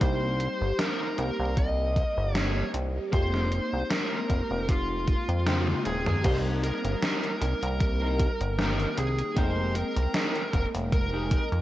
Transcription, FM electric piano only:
0.00 2.30 G3 medium
0.00 2.30 A#3 medium
0.00 2.31 C4 medium
0.00 2.31 D#4 medium
0.00 2.31 G4 loud
2.34 3.08 G3 medium
2.34 3.09 A#3 medium
2.34 3.09 C4 medium
2.34 3.09 D#4 medium
2.34 3.09 G4 medium
3.11 5.41 G#3 medium
3.11 5.42 A#3 medium
3.11 5.42 C4 medium
3.11 5.43 D#4 medium
3.11 5.43 G4 loud
5.46 6.20 G#3 medium
5.46 6.20 A#3 medium
5.46 6.20 C4 medium
5.46 6.20 D#4 medium
5.46 6.21 G5 medium
6.23 8.53 G3 medium
6.23 8.54 A#3 medium
6.23 8.54 C4 medium
6.23 8.54 D#4 medium
6.23 8.55 G4 loud
8.58 9.32 D#3 medium
8.58 9.32 A#3 medium
8.58 9.32 C4 medium
8.58 9.32 D#4 medium
8.58 9.32 G5 medium
9.35 11.62 G#3 loud
9.35 11.62 A#3 medium
9.35 11.62 C4 medium
9.35 11.62 D#4 medium
9.35 11.62 G5 loud

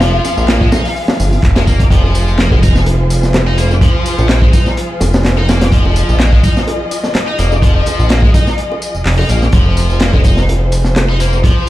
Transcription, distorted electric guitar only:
0.01 0.12 F3 medium
0.14 0.47 F3 medium
0.48 0.61 A#3 loud
0.61 0.67 G#3 loud
0.72 0.84 D#4 medium
1.56 1.62 G#3 loud
1.68 1.80 A#3 loud
1.92 2.03 F3 medium
2.04 2.38 F3 medium
2.39 2.51 A#3 medium
2.52 2.58 G#3 loud
2.63 2.75 D#4 medium
3.47 3.58 D#4 medium
3.58 3.70 A#3 loud
3.82 3.93 F3 medium
3.95 4.28 F3 medium
4.30 4.42 A#3 medium
4.42 4.48 G#3 loud
4.53 4.65 D#4 medium
5.38 5.48 D#4 medium
5.49 5.61 A#3 loud
5.73 5.84 F3 medium
5.85 6.19 F3 medium
6.20 6.32 A#3 loud
6.33 6.39 G#3 loud
6.44 6.56 D#4 medium
7.28 7.39 D#4 medium
7.39 7.51 A#3 loud
7.63 7.74 F3 medium
7.76 8.09 F3 medium
8.10 8.23 A#3 loud
8.23 8.29 G#3 loud
8.35 8.46 D#4 medium
9.18 9.29 D#4 medium
9.29 9.42 A#3 loud
9.53 9.65 F3 medium
9.66 10.00 F3 medium
10.01 10.13 A#3 loud
10.14 10.19 G#3 loud
10.25 10.37 D#4 medium
11.09 11.19 D#4 medium
11.20 11.32 A#3 loud
11.44 11.55 F3 medium
11.56 11.69 F3 medium

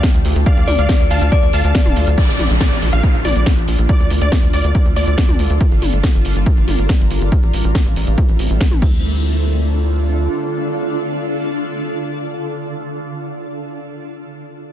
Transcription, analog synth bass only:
0.14 0.23 D2 medium
0.25 0.34 D2 loud
0.36 0.44 D2 loud
0.57 0.66 D2 medium
0.68 0.77 D2 loud
0.78 0.87 D2 medium
1.00 1.09 D2 medium
1.11 1.19 D2 loud
1.21 1.30 D2 medium
1.43 1.52 D2 medium
1.53 1.62 D2 loud
1.64 1.73 D2 loud
1.86 1.95 D1 medium
1.96 2.05 D2 loud
2.07 2.16 D2 medium
2.29 2.37 A#1 medium
2.39 2.48 A#1 loud
2.50 2.59 A#1 medium
2.71 2.80 A#1 medium
2.82 2.91 A#1 loud
2.93 3.02 A#1 medium
3.14 3.23 A#1 medium
3.25 3.34 A#1 medium
3.36 3.44 A#1 medium
3.57 3.66 A#1 medium
3.68 3.77 A#1 loud
3.78 3.87 A#1 medium
4.00 4.09 D2 medium
4.11 4.19 D2 medium
4.21 4.30 D2 medium
4.43 4.52 D2 medium
4.53 4.62 D2 loud
4.64 4.73 D2 medium
4.85 4.94 D2 medium
4.96 5.05 D2 medium
5.07 5.16 D2 medium
5.28 5.37 D2 medium
5.39 5.48 D2 loud
5.50 5.59 D2 medium
5.71 5.80 G1 medium
5.82 5.91 G1 medium
5.93 6.02 G1 medium
6.14 6.23 G1 medium
6.25 6.34 G1 loud
6.36 6.44 G1 medium
6.57 6.66 G1 medium
6.68 6.77 G1 loud
6.78 6.87 G1 medium
7.00 7.09 G1 medium
7.11 7.19 G1 loud
7.21 7.30 G1 medium
7.43 7.52 A1 medium
7.54 7.62 A1 medium
7.64 7.73 A1 medium
7.86 7.94 A1 medium
7.96 8.05 A1 loud
8.07 8.16 A1 medium
8.29 8.37 A1 medium
8.39 8.48 A1 medium
8.50 8.59 A1 medium
8.71 8.80 A1 medium
8.82 10.28 D2 medium

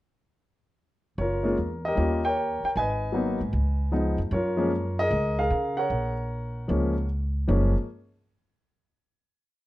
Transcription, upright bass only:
1.18 1.54 F#1 medium
1.58 1.94 E2 medium
1.97 2.59 D#2 medium
2.63 muted upright bass stroke soft
2.76 3.37 G#1 medium
3.41 3.52 G#2 medium
3.53 4.15 C#2 medium
4.18 4.30 F2 medium
4.31 5.07 F#2 medium
5.11 5.48 C#2 medium
5.50 5.87 C#3 medium
5.90 6.65 A#1 medium
6.69 7.44 C#2 medium
7.49 7.73 F#1 medium

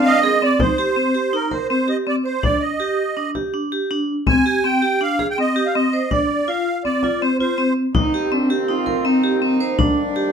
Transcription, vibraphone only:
0.23 0.35 G#4 medium
0.42 0.53 C4 medium
0.60 0.71 D#4 medium
0.78 0.90 G4 medium
0.96 1.08 C4 medium
1.14 1.26 G4 medium
1.33 1.45 D#4 medium
1.51 1.63 A#4 medium
1.70 1.82 C4 medium
1.88 2.00 G4 medium
2.07 2.18 C4 medium
2.26 2.37 C5 medium
2.43 2.66 D4 medium
2.80 3.03 G4 medium
3.17 3.28 D4 medium
3.35 3.47 G4 medium
3.54 3.65 D4 medium
3.72 3.84 G4 medium
3.91 4.13 D4 medium
4.27 4.39 C4 medium
4.46 4.57 G4 medium
4.64 4.76 C4 medium
4.82 4.94 G4 medium
5.01 5.12 D4 medium
5.19 5.31 G#4 medium
5.38 5.49 C4 medium
5.56 5.67 G4 medium
5.75 5.86 C4 medium
5.93 6.04 C5 medium
6.11 6.34 D4 medium
6.48 6.71 F4 medium
6.85 6.96 C4 medium
7.04 7.15 F4 medium
7.22 7.33 C4 medium
7.40 7.52 F4 medium
7.58 7.81 C4 medium
7.95 8.06 D#4 medium
8.14 8.25 G4 medium
8.32 8.43 C4 medium
8.50 8.62 G4 medium
8.69 8.80 D#4 medium
8.86 8.98 A#4 medium
9.05 9.17 C4 medium
9.24 9.35 G4 medium
9.42 9.54 C4 medium
9.60 9.72 C5 medium
9.79 10.02 D4 medium
10.16 10.32 G4 medium

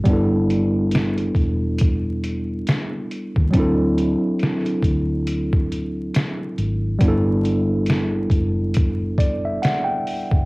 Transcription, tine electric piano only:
0.04 3.49 G3 medium
0.04 3.50 B3 medium
0.09 3.51 D4 medium
0.09 3.52 E4 medium
0.13 3.53 A4 medium
3.50 6.96 F#3 medium
3.50 6.97 C4 medium
3.55 6.98 D4 medium
3.55 6.99 E4 medium
3.59 7.00 A4 medium
6.99 10.44 G3 medium
6.99 10.45 B3 medium
7.04 10.45 D4 medium
7.04 10.45 E4 medium
7.08 10.45 A4 loud
9.19 9.42 D5 medium
9.45 9.62 E5 medium
9.63 9.86 F#5 medium
9.85 10.44 G5 medium

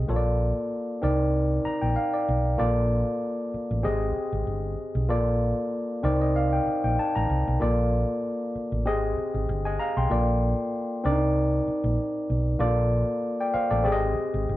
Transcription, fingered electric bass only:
0.09 0.51 A#1 medium
1.03 1.58 C2 medium
1.66 muted fingered electric bass stroke soft
1.82 1.95 A#1 medium
2.29 2.56 B1 medium
2.60 3.02 A#1 medium
3.54 muted fingered electric bass stroke soft
3.71 3.83 A1 medium
3.84 4.12 G#1 medium
4.16 muted fingered electric bass stroke soft
4.33 4.45 G#1 medium
4.47 4.74 G1 medium
4.95 5.10 B1 medium
5.10 5.52 A#1 medium
6.04 6.58 C2 medium
6.67 muted fingered electric bass stroke soft
6.84 6.96 A#1 medium
7.16 7.28 A1 medium
7.29 7.44 C2 medium
7.47 7.59 B1 medium
7.62 8.03 A#1 medium
8.55 muted fingered electric bass stroke soft
8.72 8.87 A1 medium
8.87 9.13 G#1 loud
9.18 muted fingered electric bass stroke soft
9.34 9.47 G#1 medium
9.49 9.76 G1 medium
9.97 10.09 B1 medium
10.11 10.53 A#1 loud
11.05 11.59 C2 medium
11.68 muted fingered electric bass stroke soft
11.84 11.96 A#1 medium
12.30 12.57 B1 medium
12.60 13.02 A#1 loud
13.54 muted fingered electric bass stroke soft
13.71 13.84 A1 medium
13.85 14.13 G#1 medium
14.17 muted fingered electric bass stroke soft
14.34 14.46 G#1 medium
14.49 14.57 G1 medium

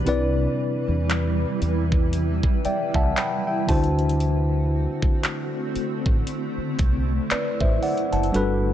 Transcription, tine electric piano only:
0.05 3.64 C3 medium
0.05 3.64 C4 medium
0.05 3.65 E4 medium
0.05 3.65 B4 medium
0.05 2.64 D5 medium
2.65 2.93 D5 medium
2.65 2.94 E5 medium
2.65 2.94 G5 medium
2.95 3.15 E5 medium
2.95 3.16 F#5 medium
2.95 3.16 A5 medium
3.17 3.46 G5 medium
3.17 3.45 B5 medium
3.47 3.96 E5 medium
3.47 3.96 G5 medium
3.67 7.77 D3 medium
3.67 7.78 D4 medium
3.67 7.78 E4 medium
3.67 7.79 F#4 medium
3.67 7.28 C5 medium
3.67 4.17 A5 medium
7.31 7.60 B4 medium
7.31 7.59 D5 medium
7.61 7.82 C5 medium
7.61 7.81 E5 medium
7.83 8.11 D5 medium
7.83 8.11 F#5 medium
8.13 8.62 F#5 medium
8.13 8.62 A5 medium
8.32 8.73 G3 medium
8.32 8.73 D4 medium
8.32 8.73 F#4 medium
8.32 8.73 A4 medium
8.32 8.73 B4 medium

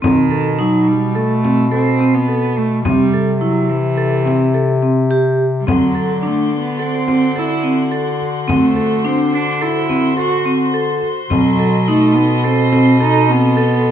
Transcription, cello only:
0.02 0.61 D#3 medium
0.60 0.89 F#3 medium
0.88 1.18 G3 medium
1.16 1.71 A3 medium
1.72 2.16 C4 medium
2.14 2.59 B3 medium
2.58 2.84 A3 medium
2.85 3.37 G3 medium
3.41 3.72 F#3 medium
3.71 4.83 E3 medium
5.60 5.70 G3 medium
5.68 6.29 F#3 medium
6.27 6.54 A3 medium
6.56 6.86 B3 medium
6.84 7.40 C4 medium
7.38 7.80 E4 medium
8.51 9.07 A3 medium
9.05 9.35 C4 medium
9.34 9.64 D4 medium
9.62 10.17 E4 medium
10.18 10.58 F#4 medium
11.30 11.90 F#3 medium
11.88 12.17 A3 medium
12.16 12.46 B3 medium
12.45 13.01 C4 medium
13.02 13.32 D#4 medium
13.31 13.91 B3 loud

